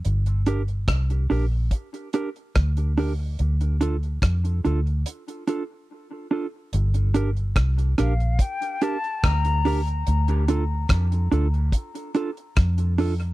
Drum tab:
HH |xxxxxxo-xxxxxxo-|xxxxxxxxxxx-----|xxxxxxxxxxxxxxox|xxx-xxxxxxxxxxox|
SD |----r-------r---|----r-----------|----r-r-----r---|----r-------r---|
BD |----o---o---o---|----o-----------|----o---o---o---|----o---o---o---|